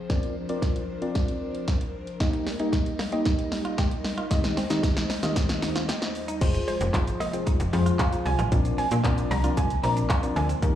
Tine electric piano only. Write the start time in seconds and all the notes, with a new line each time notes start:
0.10 C4 F4 A#4 D5
0.49 C4 F4 A#4 D5
1.02 C4 F4 A#4 D5
2.20 A#3 D#4 G4 D#5
2.60 A#3 D#4 G4 D#5
3.12 A#3 D#4 G4 D#5
4.31 D#3 C4 D#4 G4 D#5
4.70 D#3 C4 D#4 G4 D#5
5.23 D#3 C4 D#4 G4 D#5
6.41 F4 G#4 C5
6.94 F4 G#4 C5
7.33 F4 G#4 C5
7.73 F4 G#4 C5
8.12 F4 G#4 C5
8.52 C4 D4 F4 A#4 D5
9.04 C4 D4 F4 A#4 D5
9.44 C4 D4 F4 A#4 D5
9.83 C4 D4 F4 A#4 D5
10.23 C4 D4 F4 A#4 D5
10.62 D#4 G4 A#4